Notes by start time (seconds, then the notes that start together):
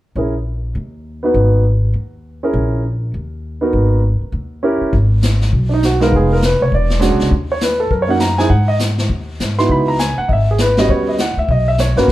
0.15 A#1 C#4 E4 G#4 A#4
0.75 D#2
1.23 B3 D#4 F#4 B4
1.34 G#1
1.94 D#2
2.43 C#4 E4 G#4 A#4
2.53 A#1
3.14 D#2
3.61 B3 D#4 F#4 A#4
3.73 G#1
4.21 muted upright bass stroke
4.32 D#2
4.63 C#4 E4 G4 A#4
4.81 muted upright bass stroke
4.93 G#1, brush sweep, kick
5.23 snare, hi-hat pedal
5.41 snare
5.53 B1, brush sweep, kick
5.74 D#4
5.83 F#4, snare, hi-hat pedal
6.00 G#3 B3 D#4 F4 A#4, snare
6.13 F1 G#4, brush sweep, kick
6.33 A#4
6.42 B4, snare, hi-hat pedal
6.60 F1 C#5
6.72 E1 D5, brush sweep, kick
6.90 snare
6.99 G#3 C#4 D4 F#4, snare, hi-hat pedal
7.10 B1
7.20 C#2, snare
7.31 D#2, brush sweep, kick
7.52 C#5
7.61 B4, snare, hi-hat pedal
7.80 A4
7.91 F#2 A#4, brush sweep, kick
8.02 C#5
8.07 A#3 C#4 D#4 F#4 F#5
8.20 A#5, snare, hi-hat pedal
8.38 C4 D#4 E4 G#4 G#5, snare
8.50 G#2 F#5, brush sweep, kick
8.68 D#5
8.79 snare, hi-hat pedal
8.98 snare
9.10 D#2, brush sweep, kick
9.39 G#2, snare, hi-hat pedal
9.58 B3 D#4 E4 F#4 C6, snare
9.69 C#2 B5, brush sweep, kick
9.88 A#5
9.99 G#5, snare, hi-hat pedal
10.18 F#5, muted upright bass stroke
10.29 G#1 D#5, brush sweep, kick
10.33 E5
10.51 G#4
10.58 B4, snare, hi-hat pedal
10.77 G3 B3 C#4 F#4 D#5, snare
10.89 D#2 C#5, brush sweep, kick
11.09 D#5
11.18 F#5, snare, hi-hat pedal
11.37 D2 E5
11.48 B1 D#5, brush sweep, kick
11.68 E5
11.78 C#5, snare, hi-hat pedal
11.96 G1 A#3 B3 C#4 F#4 B4, snare
12.08 G#1, brush sweep, kick, snare